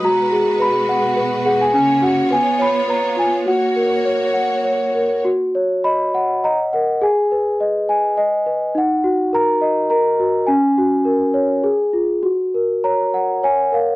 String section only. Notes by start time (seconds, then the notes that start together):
Already playing: B4
0.02 B2 G#3 F#4
1.76 C#3 A#3 C#5
2.30 B3 F4
3.46 A#3 F#4 C#5